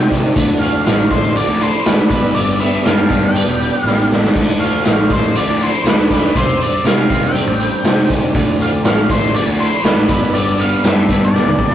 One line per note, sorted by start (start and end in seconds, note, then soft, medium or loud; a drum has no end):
0.00 0.30 C3 loud
0.00 0.10 G3 medium
0.00 0.34 C4 medium
0.00 0.36 C4 medium
0.00 0.34 G4 medium
0.00 0.35 G4 medium
0.00 0.34 D5 medium
0.10 1.34 D4 medium
0.10 kick medium
0.10 snare soft
0.10 closed hi-hat medium
0.35 0.79 D2 loud
0.35 1.60 D3 medium
0.35 2.10 F3 medium
0.35 2.10 E4 medium
0.35 2.10 D5 medium
0.35 kick loud
0.35 closed hi-hat loud
0.49 closed hi-hat soft
0.59 1.09 A3 medium
0.59 0.83 F5 medium
0.59 closed hi-hat medium
0.85 1.41 A1 loud
0.85 2.10 F3 medium
0.85 1.11 F5 medium
0.85 snare loud
0.85 closed hi-hat loud
1.10 1.84 A3 medium
1.10 1.37 C5 medium
1.10 kick medium
1.10 closed hi-hat medium
1.23 closed hi-hat medium
1.34 3.35 D4 medium
1.34 1.62 D5 loud
1.34 closed hi-hat loud
1.48 1.70 D2 medium
1.48 closed hi-hat medium
1.59 2.10 E4 medium
1.59 1.86 C5 medium
1.59 closed hi-hat medium
1.74 closed hi-hat medium
1.85 1.97 D2 medium
1.85 2.10 A3 medium
1.85 2.09 B4 medium
1.85 snare loud
1.85 closed hi-hat loud
1.98 2.09 D2 medium
1.98 closed hi-hat medium
2.10 2.76 G1 medium
2.10 2.34 G2 medium
2.10 4.34 B3 medium
2.10 4.34 G4 medium
2.10 2.36 B4 medium
2.10 6.32 D5 medium
2.10 kick loud
2.10 closed hi-hat medium
2.23 closed hi-hat soft
2.35 3.61 G2 medium
2.35 2.60 D5 loud
2.35 closed hi-hat loud
2.49 closed hi-hat soft
2.60 3.10 B3 medium
2.60 2.85 E5 loud
2.60 closed hi-hat medium
2.73 closed hi-hat medium
2.85 3.41 G2 loud
2.85 4.11 G3 medium
2.85 3.21 F5 loud
2.85 snare loud
2.85 closed hi-hat medium
3.10 3.84 B3 medium
3.10 kick loud
3.10 closed hi-hat medium
3.24 3.84 G5 loud
3.35 4.09 D4 medium
3.35 closed hi-hat loud
3.48 3.70 E1 medium
3.60 4.35 G4 medium
3.60 closed hi-hat medium
3.84 4.28 A1 loud
3.84 4.35 B3 medium
3.84 4.07 F5 loud
3.84 snare medium
4.09 5.34 D4 medium
4.09 snare loud
4.24 snare medium
4.33 4.79 D2 loud
4.33 5.60 D3 medium
4.33 6.32 F3 medium
4.33 6.32 E4 medium
4.33 kick loud
4.33 crash loud
4.49 closed hi-hat medium
4.60 5.09 A3 medium
4.60 4.83 F5 medium
4.60 closed hi-hat medium
4.85 5.40 A1 loud
4.85 6.10 F3 medium
4.85 5.11 F5 loud
4.85 snare loud
4.85 closed hi-hat loud
4.85 tambourine loud
5.10 5.84 A3 medium
5.10 5.37 C5 medium
5.10 kick medium
5.10 closed hi-hat medium
5.23 closed hi-hat soft
5.34 6.10 D4 medium
5.34 5.62 D5 medium
5.34 closed hi-hat loud
5.48 5.70 D2 medium
5.48 closed hi-hat medium
5.60 6.35 E4 medium
5.60 5.87 C5 medium
5.60 closed hi-hat medium
5.74 closed hi-hat medium
5.84 5.96 D2 loud
5.84 6.35 A3 medium
5.84 6.12 B4 medium
5.84 snare loud
5.84 closed hi-hat loud
5.84 tambourine loud
5.98 6.30 D2 medium
5.98 closed hi-hat medium
6.10 6.38 D4 medium
6.10 6.37 B4 medium
6.10 kick medium
6.10 snare soft
6.10 closed hi-hat medium
6.24 closed hi-hat soft
6.35 6.57 C2 loud
6.35 7.60 C3 medium
6.35 8.33 G3 medium
6.35 8.33 D4 medium
6.35 8.33 C5 medium
6.35 6.62 C5 loud
6.35 kick loud
6.35 closed hi-hat loud
6.49 closed hi-hat medium
6.60 7.09 C4 medium
6.60 6.85 D5 loud
6.60 closed hi-hat medium
6.74 closed hi-hat medium
6.85 7.39 C3 medium
6.85 8.10 G3 medium
6.85 7.24 F5 loud
6.85 snare loud
6.85 closed hi-hat loud
6.85 tambourine loud
7.10 7.83 C4 medium
7.10 kick loud
7.10 closed hi-hat medium
7.24 8.07 G5 medium
7.34 8.09 D4 medium
7.34 closed hi-hat loud
7.47 7.69 A1 loud
7.59 8.34 G4 medium
7.59 closed hi-hat medium
7.84 8.28 C3 medium
7.84 8.35 C4 medium
7.84 snare loud
7.84 closed hi-hat loud
7.84 tambourine loud
7.98 closed hi-hat soft
8.09 9.33 D4 medium
8.09 kick medium
8.09 closed hi-hat medium
8.34 8.78 D2 loud
8.34 9.59 D3 medium
8.34 10.07 F3 medium
8.34 10.07 E4 medium
8.34 11.75 D5 medium
8.34 kick loud
8.34 closed hi-hat loud
8.48 closed hi-hat soft
8.59 9.09 A3 medium
8.59 8.69 F5 loud
8.59 closed hi-hat medium
8.84 9.39 A1 medium
8.84 10.09 F3 medium
8.84 9.08 F5 loud
8.84 snare loud
8.84 closed hi-hat medium
8.84 tambourine loud
9.09 9.82 A3 medium
9.09 9.36 C5 medium
9.09 kick loud
9.09 closed hi-hat medium
9.22 closed hi-hat soft
9.34 11.33 D4 medium
9.34 9.41 D5 loud
9.34 closed hi-hat loud
9.47 9.69 D2 medium
9.47 closed hi-hat soft
9.59 10.09 E4 medium
9.59 9.83 C5 medium
9.59 closed hi-hat medium
9.72 closed hi-hat medium
9.83 9.95 D2 medium
9.83 10.09 A3 medium
9.83 10.08 B4 medium
9.83 snare loud
9.83 closed hi-hat medium
9.83 tambourine loud
9.97 10.08 A1 medium
9.97 closed hi-hat medium
10.09 10.74 G1 loud
10.09 10.33 G2 medium
10.09 11.75 B3 medium
10.09 11.75 G4 medium
10.09 10.32 B4 medium
10.09 kick loud
10.09 closed hi-hat medium
10.22 closed hi-hat medium
10.34 11.59 G2 medium
10.34 10.59 D5 loud
10.34 closed hi-hat loud
10.47 closed hi-hat soft
10.58 11.07 B3 medium
10.58 10.85 F5 loud
10.58 closed hi-hat medium
10.72 closed hi-hat medium
10.83 11.38 G2 medium
10.83 11.75 G3 medium
10.83 11.20 E5 loud
10.83 snare loud
10.83 closed hi-hat loud
10.83 tambourine loud
11.08 11.75 B3 medium
11.08 kick medium
11.08 closed hi-hat medium
11.25 11.75 D5 medium
11.34 11.75 D4 medium
11.34 snare medium
11.46 11.57 E1 medium
11.46 high tom medium
11.58 11.75 A1 medium
11.58 11.75 G4 medium
11.58 kick medium
11.71 mid tom medium